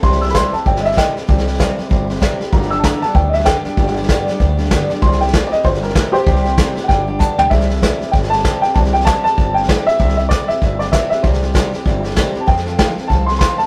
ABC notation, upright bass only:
X:1
M:4/4
L:1/8
Q:"Swing" 1/4=193
K:C
V:1 name="Upright bass" clef=bass
C,,3 z G,,,3 z | C,,3 z G,,,3 z | G,,,3 z D,,3 z | G,,,3 z D,,3 z |
C,,3 z G,,,3 z | C,,3 z G,,,3 z | C,,3 z G,,,3 z | C,,3 z G,,,3 z |
C,,3 z G,,,3 z | C,,3 z G,,,3 z | F,,3 z C,,3 z |]